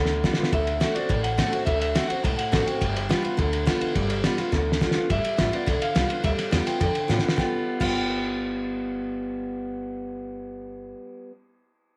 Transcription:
Already playing: upright bass D2, steel-string acoustic guitar D3
0.06 snare
0.24 steel-string acoustic guitar G3 B3 F4, kick, snare
0.34 snare
0.38 steel-string acoustic guitar B3 F4, muted upright bass stroke
0.43 snare
0.53 upright bass D2, steel-string acoustic guitar D3, clean electric guitar E5, kick, ride
0.67 ride
0.80 steel-string acoustic guitar D3 A3 C4 F#4, snare, ride
0.95 steel-string acoustic guitar C4 F#4, clean electric guitar D5, muted upright bass stroke, ride
1.09 upright bass A1, steel-string acoustic guitar A2, kick, ride
1.23 clean electric guitar F#5, ride
1.38 steel-string acoustic guitar D3 A3 C4 F#4, kick, snare, ride
1.52 steel-string acoustic guitar C4 F#4, muted upright bass stroke, ride
1.66 upright bass D2, steel-string acoustic guitar D3, clean electric guitar E5, kick, ride
1.80 clean electric guitar E5, ride
1.95 steel-string acoustic guitar D3 A3 C4 F#4, snare, ride
2.08 steel-string acoustic guitar C4 F#4, clean electric guitar F#5, muted upright bass stroke, ride
2.24 upright bass B1, steel-string acoustic guitar A2, clean electric guitar A5, kick, ride
2.38 clean electric guitar F#5, muted upright bass stroke, ride
2.52 upright bass A1, steel-string acoustic guitar D3 A3 C4 F#4, kick, snare, ride
2.66 steel-string acoustic guitar C4 F#4, clean electric guitar G5, muted upright bass stroke, ride
2.81 upright bass G1, steel-string acoustic guitar G3, kick, ride
2.96 ride
3.09 steel-string acoustic guitar G3 B3 F4, snare, ride
3.23 steel-string acoustic guitar B3 F4, muted upright bass stroke, ride
3.37 upright bass D2, steel-string acoustic guitar D3, kick, ride
3.53 ride
3.65 steel-string acoustic guitar G3 B3 F4, kick, snare, ride
3.81 steel-string acoustic guitar B3 F4, muted upright bass stroke, ride
3.95 upright bass G1, steel-string acoustic guitar G3, kick, ride
4.10 ride
4.24 steel-string acoustic guitar G3 B3 F4, snare, ride
4.38 steel-string acoustic guitar B3 F4, muted upright bass stroke, snare, ride
4.52 upright bass D2, steel-string acoustic guitar D3, kick, snare
4.72 snare
4.81 steel-string acoustic guitar G3 B3 F4, kick, snare
4.91 steel-string acoustic guitar F4, snare
4.96 steel-string acoustic guitar B3, muted upright bass stroke
5.10 upright bass G1, steel-string acoustic guitar G3, clean electric guitar E5, kick, ride
5.24 muted upright bass stroke, ride
5.37 upright bass A1, steel-string acoustic guitar G3 B3 F4, snare, ride
5.52 steel-string acoustic guitar B3 F4, clean electric guitar D5, muted upright bass stroke, ride
5.66 upright bass B1, steel-string acoustic guitar D3, kick, snare, ride
5.81 clean electric guitar F5, muted upright bass stroke, ride
5.95 upright bass C2, steel-string acoustic guitar G3 B3 F4, snare, ride
6.09 steel-string acoustic guitar B3 F4, muted upright bass stroke, ride
6.24 upright bass D2, steel-string acoustic guitar G3, clean electric guitar E5, kick, snare, ride
6.38 clean electric guitar F5, muted upright bass stroke, snare, ride
6.51 upright bass E2, steel-string acoustic guitar G3 B3 F4, snare, ride
6.66 steel-string acoustic guitar B3 F4, clean electric guitar G5, muted upright bass stroke, snare, ride
6.80 upright bass F2, steel-string acoustic guitar D3, clean electric guitar G5, kick, snare, ride
6.95 muted upright bass stroke, ride
7.08 upright bass A2, steel-string acoustic guitar G3 B3 F4, snare
7.19 steel-string acoustic guitar F4, snare
7.24 steel-string acoustic guitar B3, muted upright bass stroke
7.29 snare
7.36 upright bass G1, steel-string acoustic guitar G3 B3 F4, clean electric guitar G5, kick, snare
7.80 upright bass G1, steel-string acoustic guitar G3 B3 F4, clean electric guitar G5, kick, crash

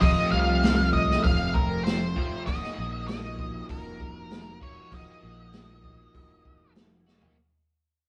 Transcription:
0.00 picked electric bass F1, overdriven electric guitar F2 C3 F3 A3 C4 F4, lead electric guitar D#5, kick, open hi-hat
0.32 picked electric bass C2, lead electric guitar F5
0.63 snare, open hi-hat
0.93 lead electric guitar D#5, kick
1.11 snare
1.24 picked electric bass F1, lead electric guitar F5, kick, open hi-hat
1.54 lead electric guitar A#4, kick
1.84 lead electric guitar C5, snare, open hi-hat
2.16 overdriven electric guitar F2 C3 F3 A3 C4 F4, kick
2.46 picked electric bass F1, overdriven electric guitar F3 A#3 D#4 F#4, lead electric guitar D#5, kick, open hi-hat
2.63 snare
2.79 picked electric bass A#1
3.08 lead electric guitar D#5, snare, open hi-hat
3.39 kick
3.69 picked electric bass F1, lead electric guitar A#4, kick, open hi-hat
4.00 kick
4.31 snare, open hi-hat
4.62 overdriven electric guitar F3 A#3 D#4 F#4, lead electric guitar C#5, kick
4.91 picked electric bass F1, overdriven electric guitar F3 A#3 D#4, lead electric guitar D#5, kick, open hi-hat
4.95 overdriven electric guitar F#4
5.23 picked electric bass A#1
5.53 snare, open hi-hat
5.84 kick
6.15 picked electric bass F1, kick, open hi-hat
6.45 kick
6.75 snare, open hi-hat
7.06 overdriven electric guitar A#3 D#4 F#4, snare
7.11 overdriven electric guitar F3
7.22 floor tom

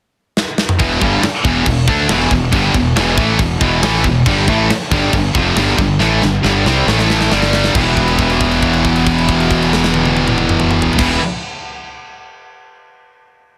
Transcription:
0.37 snare
0.58 snare
0.69 mid tom
0.79 fingered electric bass E1, distorted electric guitar E2 B2 E3, kick, crash
1.01 fingered electric bass G1, distorted electric guitar G2 D3 G3, kick, crash
1.22 muted fingered electric bass stroke, muted distorted electric guitar stroke, snare, crash
1.43 fingered electric bass E1, distorted electric guitar E2 B2 E3, kick, crash
1.66 fingered electric bass E1, distorted electric guitar E2 B2, kick, crash
1.87 fingered electric bass D2, distorted electric guitar D3 A3 D4, kick, crash
2.08 fingered electric bass E1, distorted electric guitar E2 B2 E3, snare, crash
2.31 fingered electric bass E1, distorted electric guitar E2 B2, kick, crash
2.52 fingered electric bass G1, distorted electric guitar G2 D3 G3, kick, crash
2.74 fingered electric bass E1, distorted electric guitar E2 B2, kick, crash
2.95 fingered electric bass E1, distorted electric guitar E2 B2 E3, snare, crash
3.16 fingered electric bass A1, distorted electric guitar A2 E3 A3, kick, crash
3.39 fingered electric bass E1, distorted electric guitar E2 B2, kick, crash
3.59 fingered electric bass E1, distorted electric guitar E2 B2 E3, kick, crash
3.82 fingered electric bass A1, distorted electric guitar A2 E3 A3, snare, crash
4.04 fingered electric bass E1, distorted electric guitar E2 B2, kick, crash
4.26 fingered electric bass G1, distorted electric guitar G2 D3 G3, kick, crash
4.46 fingered electric bass A1, distorted electric guitar A2 E3 A3, kick, crash
4.69 muted distorted electric guitar stroke, muted fingered electric bass stroke, snare, crash
4.90 fingered electric bass G1, distorted electric guitar G2 D3 G3, kick, crash
5.13 fingered electric bass G1, distorted electric guitar G2 D3, kick, crash
5.34 fingered electric bass F1, distorted electric guitar F2 C3 F3, kick, crash
5.56 fingered electric bass G1, distorted electric guitar G2 D3 G3, snare, crash
5.78 fingered electric bass G1, distorted electric guitar G2 D3, kick, crash
5.99 fingered electric bass A1, distorted electric guitar A2 E3 A3, snare
6.22 fingered electric bass G1, distorted electric guitar G2 D3, snare
6.43 fingered electric bass G1, distorted electric guitar G2 D3 G3, snare
6.65 fingered electric bass C2, distorted electric guitar C3 G3 C4, snare
6.86 fingered electric bass A1, distorted electric guitar A2 E3 A3, snare
6.99 snare
7.10 snare
7.21 snare
7.31 fingered electric bass G1, distorted electric guitar G2 D3 G3, snare
7.42 snare
7.53 snare
7.64 snare
7.74 fingered electric bass E1, distorted electric guitar E2 B2 E3 B3 E4 G4, kick, crash
7.78 distorted electric guitar E3 B4
7.97 kick, crash
8.08 crash
8.19 kick, crash
8.30 crash
8.40 kick, crash
8.51 crash
8.62 kick, crash
8.73 crash
8.85 kick, crash
8.96 crash
9.07 kick, crash
9.18 crash
9.29 kick, crash
9.40 crash
9.51 kick, crash
9.62 crash
9.73 snare
9.84 snare
9.94 high tom
10.05 high tom
10.17 high tom
10.28 mid tom
10.38 mid tom
10.49 mid tom
10.60 mid tom
10.71 mid tom
10.82 floor tom
10.93 floor tom
10.98 fingered electric bass E1, distorted electric guitar E2 B2 E3 B3 E4 G4, kick, snare, crash
11.02 distorted electric guitar B4

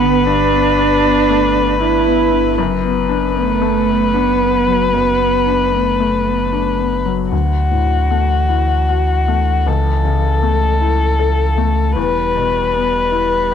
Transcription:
Already playing: sub bass G1, felt piano G2 A3 B3 D4, cello B3, violin B4
0.01 felt piano D3
0.26 felt piano G2, cello D4
0.52 felt piano B3
0.78 felt piano D4
1.04 felt piano B3
1.30 felt piano A3
1.57 felt piano B3
1.80 felt piano D4, cello E4
2.06 felt piano B3
2.33 felt piano D3
2.58 sub bass F#1, felt piano F#2, violin B4
2.84 felt piano B3
3.09 felt piano D4
3.36 cello A3, felt piano B3
3.61 felt piano A3
3.88 felt piano B3
4.12 cello B3, felt piano D4
4.40 felt piano B3
4.68 felt piano F#3
4.92 felt piano F#2, cello B3
5.20 felt piano B3
5.47 felt piano D4
5.72 cello A3, felt piano B3
6.00 felt piano A3
6.26 felt piano B3
6.52 felt piano D4
6.79 felt piano B3
7.06 felt piano F#3
7.31 felt piano D2, sub bass D2, cello E3, violin F#4
7.71 felt piano A2
8.11 felt piano A3
8.49 felt piano E4
8.89 felt piano F#4
9.28 felt piano A3
9.66 sub bass C#2, felt piano C#2, violin A4
10.05 felt piano C#3
10.43 felt piano A3
10.81 felt piano E4
11.19 felt piano A4
11.58 felt piano A3
11.96 sub bass E1, felt piano E2, cello G3, violin B4
12.36 felt piano B2
12.74 felt piano B3
13.12 felt piano E4

